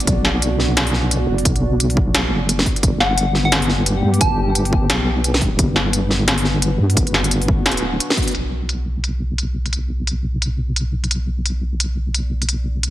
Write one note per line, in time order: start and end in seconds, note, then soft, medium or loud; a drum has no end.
0.00 2.82 B3 loud
0.00 2.83 D4 medium
0.00 2.83 F#4 medium
0.00 8.35 D5 medium
0.00 closed hi-hat soft
0.07 1.27 B1 loud
0.07 kick loud
0.07 closed hi-hat medium
0.25 snare medium
0.42 closed hi-hat medium
0.60 snare soft
0.77 snare loud
0.77 closed hi-hat medium
0.87 open hi-hat medium
0.94 snare soft
1.11 closed hi-hat medium
1.28 1.44 F#1 loud
1.38 open hi-hat soft
1.45 2.33 B1 loud
1.45 kick loud
1.45 closed hi-hat medium
1.56 closed hi-hat soft
1.80 closed hi-hat medium
1.90 open hi-hat soft
1.97 kick loud
2.15 snare loud
2.15 closed hi-hat medium
2.32 2.65 F#1 medium
2.49 closed hi-hat medium
2.59 snare medium
2.66 kick medium
2.66 open hi-hat soft
2.76 closed hi-hat soft
2.83 4.03 G1 loud
2.83 12.90 B3 medium
2.83 kick loud
2.83 closed hi-hat medium
2.98 12.90 D4 medium
2.98 3.22 F#5 medium
2.98 snare medium
3.18 closed hi-hat medium
3.31 6.37 G4 medium
3.31 snare soft
3.45 3.65 F#5 medium
3.52 snare loud
3.52 closed hi-hat medium
3.62 open hi-hat medium
3.69 snare soft
3.86 closed hi-hat medium
4.03 4.20 G2 loud
4.14 open hi-hat soft
4.21 4.91 G1 loud
4.21 4.48 A5 medium
4.21 kick loud
4.21 closed hi-hat medium
4.55 closed hi-hat medium
4.65 open hi-hat soft
4.73 kick loud
4.90 5.41 B1 loud
4.90 snare loud
4.90 closed hi-hat medium
5.24 closed hi-hat medium
5.34 snare medium
5.41 5.58 D1 medium
5.41 kick medium
5.41 open hi-hat soft
5.59 6.79 G1 loud
5.59 kick loud
5.59 closed hi-hat medium
5.76 snare medium
5.93 closed hi-hat medium
6.11 snare soft
6.25 12.90 F#4 medium
6.25 snare loud
6.25 closed hi-hat medium
6.38 open hi-hat medium
6.45 snare soft
6.62 closed hi-hat medium
6.79 6.96 G2 loud
6.90 open hi-hat soft
6.97 7.67 G1 loud
6.97 kick loud
6.97 closed hi-hat medium
7.07 closed hi-hat soft
7.14 snare medium
7.24 closed hi-hat soft
7.31 closed hi-hat medium
7.42 open hi-hat soft
7.48 kick loud
7.66 7.99 D1 medium
7.66 snare loud
7.66 closed hi-hat soft
7.71 closed hi-hat medium
7.77 closed hi-hat medium
8.00 closed hi-hat medium
8.10 snare medium
8.17 kick medium
8.17 open hi-hat soft
8.23 open hi-hat soft
8.28 closed hi-hat soft
8.28 open hi-hat soft
8.31 12.90 B1 medium
8.31 closed hi-hat medium
8.31 open hi-hat soft
8.63 12.90 D5 medium
8.69 closed hi-hat medium
9.04 closed hi-hat medium
9.38 closed hi-hat medium
9.66 closed hi-hat soft
9.73 closed hi-hat medium
10.07 closed hi-hat medium
10.42 closed hi-hat medium
10.76 closed hi-hat medium
11.04 closed hi-hat soft
11.11 closed hi-hat medium
11.46 closed hi-hat medium
11.80 closed hi-hat medium
12.14 closed hi-hat medium
12.42 closed hi-hat soft
12.49 closed hi-hat medium
12.83 closed hi-hat medium